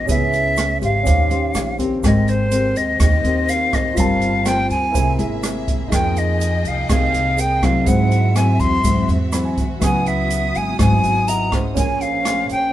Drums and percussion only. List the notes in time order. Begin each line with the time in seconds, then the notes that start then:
0.08 kick, closed hi-hat, shaker
0.33 closed hi-hat, shaker
0.57 cross-stick, closed hi-hat, shaker
0.82 kick, closed hi-hat, shaker
1.06 kick, closed hi-hat, shaker
1.30 closed hi-hat, shaker
1.54 cross-stick, closed hi-hat, shaker
1.79 kick, closed hi-hat, shaker
2.03 kick, cross-stick, closed hi-hat, shaker
2.28 closed hi-hat, shaker
2.51 closed hi-hat, shaker
2.76 closed hi-hat, shaker
3.00 kick, cross-stick, closed hi-hat, shaker
3.24 closed hi-hat, shaker
3.49 closed hi-hat, shaker
3.73 kick, cross-stick, closed hi-hat, shaker
3.97 kick, closed hi-hat, shaker
4.21 closed hi-hat, shaker
4.46 cross-stick, closed hi-hat, shaker
4.70 closed hi-hat, shaker
4.95 kick, closed hi-hat, shaker
5.19 closed hi-hat, shaker
5.43 cross-stick, closed hi-hat, shaker
5.68 kick, closed hi-hat, shaker
5.92 kick, cross-stick, closed hi-hat, shaker
6.16 closed hi-hat, shaker
6.41 closed hi-hat, shaker
6.65 closed hi-hat, shaker
6.89 kick, cross-stick, closed hi-hat, shaker
7.14 closed hi-hat, shaker
7.38 closed hi-hat, shaker
7.63 kick, cross-stick, closed hi-hat, shaker
7.86 kick, closed hi-hat, shaker
8.11 closed hi-hat, shaker
8.36 cross-stick, closed hi-hat, shaker
8.60 kick, closed hi-hat, shaker
8.84 kick, closed hi-hat, shaker
9.09 closed hi-hat, shaker
9.32 cross-stick, closed hi-hat, shaker
9.57 kick, closed hi-hat, shaker
9.82 kick, cross-stick, closed hi-hat, shaker
10.06 closed hi-hat, shaker
10.30 closed hi-hat, shaker
10.55 closed hi-hat, shaker
10.79 kick, cross-stick, closed hi-hat, shaker
11.04 closed hi-hat, shaker
11.28 closed hi-hat, shaker
11.52 kick, cross-stick, closed hi-hat, shaker
11.77 kick, closed hi-hat, shaker
12.01 closed hi-hat, shaker
12.25 cross-stick, closed hi-hat, shaker
12.49 closed hi-hat, shaker